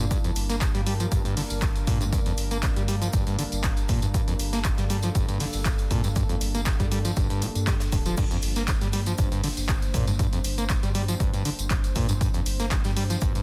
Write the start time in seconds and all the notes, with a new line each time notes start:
Already playing: G2 G3 A#3 D4
0.11 G2 A#4, kick, closed hi-hat, tambourine, shaker
0.24 F2, closed hi-hat, tambourine
0.36 G1, open hi-hat, shaker
0.49 A#3, snare, closed hi-hat, tambourine
0.61 G1, kick, snare, clap, closed hi-hat, tambourine, shaker
0.74 G2 G3, snare, closed hi-hat, tambourine
0.86 G3, open hi-hat, shaker
1.00 F3, closed hi-hat, tambourine
1.12 G1 G2, kick, closed hi-hat, tambourine, shaker
1.25 G2, closed hi-hat, tambourine
1.37 D3, open hi-hat
1.50 G1, closed hi-hat, tambourine
1.62 G1, kick, snare, clap, closed hi-hat, tambourine, shaker
1.75 closed hi-hat, tambourine
1.87 G2 A#2, kick, open hi-hat, shaker
2.01 G2, closed hi-hat, tambourine
2.13 G2, kick, closed hi-hat, tambourine, shaker
2.26 F2, closed hi-hat, tambourine
2.38 G1, open hi-hat, shaker
2.51 A#3, closed hi-hat, tambourine
2.62 G1, kick, snare, clap, closed hi-hat, tambourine, shaker
2.76 G2 G3, closed hi-hat, tambourine
2.88 G3, open hi-hat, shaker
3.02 F3, closed hi-hat, tambourine
3.13 G1 G2, kick, closed hi-hat, tambourine, shaker
3.27 G2, closed hi-hat, tambourine
3.39 D3, open hi-hat, shaker
3.52 G1, closed hi-hat, tambourine
3.64 G1, kick, snare, clap, closed hi-hat, tambourine, shaker
3.77 closed hi-hat, tambourine
3.89 G2 A#2, kick, open hi-hat, shaker
4.02 G2, closed hi-hat, tambourine
4.14 G2 A4, kick, closed hi-hat, tambourine, shaker
4.28 F2, closed hi-hat, tambourine
4.39 G1, open hi-hat, shaker
4.53 A#3, snare, closed hi-hat, tambourine
4.64 G1, kick, snare, clap, closed hi-hat, tambourine, shaker
4.78 G2 G3, snare, closed hi-hat, tambourine
4.90 G3, open hi-hat, shaker
5.02 F3, closed hi-hat, tambourine
5.15 G1 G2, kick, closed hi-hat, tambourine, shaker
5.28 G2, closed hi-hat, tambourine
5.40 D3, open hi-hat
5.53 G1, closed hi-hat, tambourine
5.65 G1, kick, snare, clap, closed hi-hat, tambourine, shaker
5.78 closed hi-hat, tambourine
5.91 G2 A#2, kick, open hi-hat, shaker
6.04 G2, closed hi-hat, tambourine
6.16 G2, kick, closed hi-hat, tambourine, shaker
6.29 F2, closed hi-hat, tambourine
6.41 G1, open hi-hat, shaker
6.54 A#3, closed hi-hat, tambourine
6.66 G1, kick, snare, clap, closed hi-hat, tambourine, shaker
6.80 G2 G3, kick, closed hi-hat, tambourine
6.92 G3, open hi-hat, shaker
7.05 F3, closed hi-hat, tambourine
7.17 G1 G2, kick, closed hi-hat, tambourine, shaker
7.30 G2, closed hi-hat, tambourine
7.42 A#2, open hi-hat, shaker
7.55 G2, closed hi-hat, tambourine
7.67 G3, kick, snare, clap, closed hi-hat, tambourine, shaker
7.80 snare, closed hi-hat, tambourine, shaker
7.92 D1 G2, kick, open hi-hat, shaker
8.05 F3, closed hi-hat, tambourine
8.17 G2 C5, kick, closed hi-hat, crash, tambourine, shaker
8.31 F2, closed hi-hat, tambourine
8.42 G1, open hi-hat, shaker
8.56 A#3, snare, closed hi-hat, tambourine
8.68 G1, kick, snare, clap, closed hi-hat, tambourine, shaker
8.81 G2 G3, snare, closed hi-hat, tambourine
8.93 G3, open hi-hat, shaker
9.06 F3, closed hi-hat, tambourine
9.18 G1 G2, kick, closed hi-hat, tambourine, shaker
9.32 G2, closed hi-hat, tambourine
9.43 D3, open hi-hat
9.57 G1, closed hi-hat, tambourine
9.68 G1, kick, snare, clap, closed hi-hat, tambourine, shaker
9.82 closed hi-hat, tambourine
9.94 G2 A#2, kick, open hi-hat, shaker
10.07 G2, closed hi-hat, tambourine
10.19 G2, kick, closed hi-hat, tambourine, shaker
10.33 F2, closed hi-hat, tambourine
10.44 G1, open hi-hat, shaker
10.58 A#3, closed hi-hat, tambourine
10.70 G1, kick, snare, clap, closed hi-hat, tambourine, shaker
10.83 G2 G3, closed hi-hat, tambourine
10.95 G3, open hi-hat, shaker
11.08 F3, closed hi-hat, tambourine
11.20 G1 G2, kick, closed hi-hat, tambourine, shaker
11.34 G2, closed hi-hat, tambourine
11.45 D3, open hi-hat, shaker
11.59 G1, closed hi-hat, tambourine
11.70 G1, kick, snare, clap, closed hi-hat, tambourine, shaker
11.84 closed hi-hat, tambourine
11.95 G2 A#2, kick, open hi-hat, shaker
12.09 G2, closed hi-hat, tambourine
12.21 G2, kick, closed hi-hat, tambourine, shaker
12.34 F2, closed hi-hat, tambourine
12.46 G1, open hi-hat, shaker
12.60 A#3, snare, closed hi-hat, tambourine
12.71 G1, kick, snare, clap, closed hi-hat, tambourine, shaker
12.84 G2 G3, snare, closed hi-hat, tambourine
12.97 G3, open hi-hat, shaker
13.10 F3, closed hi-hat, tambourine
13.21 G1 G2, kick, closed hi-hat, tambourine, shaker
13.35 G2, closed hi-hat, tambourine